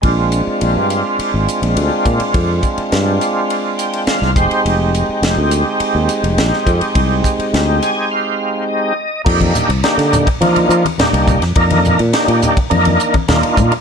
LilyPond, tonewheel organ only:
\new Staff \with { instrumentName = "Tonewheel organ" } { \time 4/4 \key f \dorian \tempo 4 = 104 << { r1 | r2 r8 g''8 f''8 c''8 | r1 | r4. aes''8 f''4 ees''4 |
r1 | r1 | } \\ { <aes c' d' f'>1~ | <aes c' d' f'>2.~ <aes c' d' f'>8 <aes c' ees' g'>8~ | <aes c' ees' g'>1~ | <aes c' ees' g'>2.~ <aes c' ees' g'>8 r8 |
<bes d' ees' g'>4 <bes d' ees' g'>4 <bes d' ees' f'>4 <bes d' ees' g'>4 | <bes d' ees' bes'>4 <bes d' ees' g'>4 <bes d' ees' bes'>4 <bes d' ees' f'>4 | } >> }